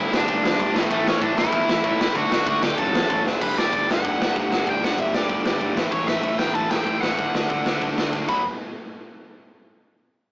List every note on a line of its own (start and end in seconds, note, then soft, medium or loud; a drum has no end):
0.00 0.12 G2 medium
0.00 0.74 G2 loud
0.00 0.11 D3 medium
0.00 0.73 D3 loud
0.00 0.11 G3 medium
0.00 0.75 G3 loud
0.00 0.68 D4 loud
0.00 0.75 D4 medium
0.00 0.13 E4 loud
0.12 0.22 G1 loud
0.12 0.25 G2 medium
0.12 0.26 D3 medium
0.12 0.27 G3 loud
0.12 0.76 D4 loud
0.12 snare loud
0.20 kick medium
0.26 0.37 G1 loud
0.26 0.57 G2 loud
0.26 0.58 D3 loud
0.26 0.58 G3 loud
0.26 kick loud
0.26 ride medium
0.43 0.53 E2 loud
0.43 snare loud
0.59 0.69 B1 loud
0.59 0.74 G2 medium
0.59 0.74 D3 loud
0.59 0.74 G3 loud
0.59 kick loud
0.59 ride medium
0.74 0.85 A1 loud
0.74 0.90 A2 medium
0.74 0.90 E3 loud
0.74 0.90 A3 loud
0.74 snare loud
0.83 kick loud
0.90 1.09 A1 loud
0.90 1.21 A2 medium
0.90 1.21 E3 loud
0.90 1.21 A3 loud
0.90 1.06 A3 loud
0.90 kick loud
0.90 ride medium
1.07 1.22 C#4 medium
1.07 snare loud
1.21 1.31 A2 medium
1.21 1.36 A2 medium
1.21 1.37 E3 medium
1.21 1.38 A3 loud
1.21 1.37 D4 medium
1.21 kick loud
1.21 ride medium
1.36 1.46 A1 loud
1.36 1.53 A2 medium
1.36 1.52 E3 medium
1.36 1.52 A3 loud
1.36 1.84 E4 loud
1.36 snare loud
1.45 kick medium
1.52 1.62 E2 loud
1.52 1.83 A2 medium
1.52 1.82 E3 loud
1.52 1.83 A3 loud
1.52 kick loud
1.52 ride medium
1.68 1.78 A1 medium
1.68 snare loud
1.84 2.03 A2 loud
1.84 1.99 A2 medium
1.84 1.99 E3 medium
1.84 2.00 A3 loud
1.84 2.17 E4 loud
1.84 kick loud
1.84 ride medium
2.00 2.14 A2 medium
2.00 2.15 E3 medium
2.00 2.15 A3 loud
2.00 snare loud
2.08 kick medium
2.15 2.25 D2 loud
2.15 2.46 D3 loud
2.15 2.47 A3 loud
2.15 2.47 D4 loud
2.15 2.47 F#4 loud
2.15 kick loud
2.15 ride medium
2.30 2.40 D2 loud
2.30 snare loud
2.46 2.56 D2 medium
2.46 2.63 D3 medium
2.46 2.63 A3 medium
2.46 2.62 D4 loud
2.46 2.64 F#4 medium
2.46 kick loud
2.46 ride medium
2.62 2.72 D2 medium
2.62 2.78 D3 medium
2.62 2.78 A3 medium
2.62 2.78 D4 medium
2.62 2.79 G4 loud
2.62 snare loud
2.70 kick medium
2.78 2.87 F#1 medium
2.78 3.08 F#2 loud
2.78 3.09 C#3 loud
2.78 3.09 F#3 loud
2.78 3.22 A4 medium
2.78 kick loud
2.78 ride medium
2.93 3.03 E2 medium
2.93 snare loud
3.10 3.19 A1 loud
3.10 3.26 F#2 medium
3.10 3.25 C#3 loud
3.10 3.25 F#3 loud
3.10 kick loud
3.10 ride medium
3.25 3.34 F#1 loud
3.25 3.41 F#2 medium
3.25 3.40 C#3 medium
3.25 3.40 F#3 loud
3.25 snare medium
3.40 3.53 G1 medium
3.40 3.58 G2 loud
3.40 3.57 D3 loud
3.40 3.58 G3 loud
3.40 3.57 B4 medium
3.40 kick loud
3.40 crash loud
3.57 3.70 G1 medium
3.57 3.72 G2 medium
3.57 3.72 D3 medium
3.57 3.73 G3 medium
3.57 3.88 D5 medium
3.57 snare loud
3.73 3.85 G1 medium
3.73 3.88 G2 medium
3.73 3.88 D3 medium
3.73 3.87 G3 loud
3.73 kick loud
3.73 open hi-hat medium
3.88 4.01 G1 medium
3.88 4.02 G2 medium
3.88 4.02 D3 medium
3.88 4.02 G3 medium
3.88 4.69 F#5 medium
3.88 snare loud
4.03 4.17 G1 medium
4.03 4.18 G2 medium
4.03 4.17 D3 medium
4.03 4.16 G3 loud
4.03 kick loud
4.03 open hi-hat medium
4.18 4.32 G1 medium
4.18 4.33 G2 medium
4.18 4.33 D3 medium
4.18 4.33 G3 medium
4.22 snare loud
4.34 4.48 G1 medium
4.34 4.49 G2 loud
4.34 4.49 D3 loud
4.34 4.48 G3 loud
4.34 kick loud
4.34 open hi-hat soft
4.49 4.63 G1 medium
4.49 4.65 G2 medium
4.49 4.65 D3 medium
4.49 4.65 G3 medium
4.49 snare loud
4.66 4.79 G1 medium
4.66 4.81 G2 medium
4.66 4.81 D3 medium
4.66 4.80 G3 loud
4.66 4.84 G5 medium
4.66 kick loud
4.66 open hi-hat medium
4.81 4.94 G1 medium
4.81 4.96 G2 medium
4.81 4.97 D3 medium
4.81 4.97 G3 medium
4.81 4.99 F#5 medium
4.81 snare loud
4.97 5.10 G1 medium
4.97 5.13 G2 medium
4.97 5.12 D3 medium
4.97 5.12 G3 loud
4.97 5.15 E5 medium
4.97 kick loud
4.97 open hi-hat medium
5.13 5.26 G1 medium
5.13 5.27 G2 medium
5.13 5.27 D3 medium
5.13 5.28 G3 medium
5.13 5.77 D5 loud
5.13 snare loud
5.28 5.41 G1 medium
5.28 5.44 G2 medium
5.28 5.44 D3 medium
5.28 5.44 G3 loud
5.28 kick loud
5.28 open hi-hat medium
5.44 5.57 G1 medium
5.44 5.59 G2 medium
5.44 5.59 D3 medium
5.44 5.60 G3 medium
5.44 snare loud
5.60 5.74 G1 medium
5.60 5.75 G2 medium
5.60 5.75 D3 loud
5.60 5.76 G3 loud
5.60 kick medium
5.60 open hi-hat medium
5.74 5.88 A1 medium
5.74 5.92 A2 medium
5.74 5.91 E3 medium
5.74 5.91 A3 loud
5.74 snare loud
5.91 6.04 A1 medium
5.91 6.06 A2 medium
5.91 6.07 E3 loud
5.91 6.08 A3 loud
5.91 6.07 C#5 medium
5.91 kick loud
5.91 open hi-hat medium
6.07 6.20 A1 medium
6.07 6.23 A2 medium
6.07 6.22 E3 medium
6.07 6.23 A3 medium
6.07 6.38 E5 loud
6.07 snare loud
6.23 6.36 A1 medium
6.23 6.38 A2 medium
6.23 6.39 E3 medium
6.23 6.40 A3 loud
6.23 kick loud
6.23 open hi-hat medium
6.39 6.52 A1 medium
6.39 6.55 A2 medium
6.39 6.55 E3 loud
6.39 6.54 A3 medium
6.39 6.54 G5 medium
6.39 snare loud
6.54 6.68 A1 medium
6.54 6.70 A2 medium
6.54 6.70 E3 medium
6.54 6.71 A3 medium
6.54 6.70 A5 loud
6.54 kick loud
6.54 open hi-hat medium
6.70 6.84 A1 medium
6.70 6.86 A2 medium
6.70 6.86 E3 medium
6.70 6.85 A3 medium
6.70 7.01 G5 loud
6.70 snare loud
6.86 6.99 A1 medium
6.86 7.02 A2 medium
6.86 7.03 E3 loud
6.86 7.03 A3 medium
6.86 kick medium
6.86 open hi-hat soft
7.01 7.15 A1 medium
7.01 7.17 A2 medium
7.01 7.18 E3 medium
7.01 7.18 A3 medium
7.01 8.24 F#5 medium
7.01 snare loud
7.17 7.31 D2 medium
7.17 7.35 D3 loud
7.17 7.35 A3 loud
7.17 7.34 D4 loud
7.17 kick loud
7.17 open hi-hat soft
7.34 7.47 D2 medium
7.34 7.50 D3 medium
7.34 7.50 A3 medium
7.34 7.50 D4 medium
7.34 snare medium
7.49 7.62 D2 medium
7.49 7.66 D3 medium
7.49 7.66 A3 medium
7.49 7.65 D4 medium
7.49 kick loud
7.49 open hi-hat soft
7.64 7.77 D2 medium
7.64 7.81 D3 medium
7.64 7.81 A3 medium
7.64 7.82 D4 medium
7.64 snare loud
7.81 7.94 D2 medium
7.81 7.97 D3 medium
7.81 7.96 A3 medium
7.81 7.96 D4 medium
7.81 kick loud
7.81 open hi-hat medium
7.97 8.10 D2 medium
7.97 8.11 D3 medium
7.97 8.12 A3 medium
7.97 8.13 D4 medium
7.97 snare loud
8.13 8.25 D2 medium
8.13 8.28 D3 medium
8.13 8.29 A3 medium
8.13 8.29 D4 loud
8.13 kick medium
8.13 snare soft
8.28 8.43 B1 medium
8.28 8.41 B2 medium
8.28 8.42 F#3 medium
8.28 8.42 B3 loud
8.28 8.43 B5 medium
8.28 kick loud
8.28 crash medium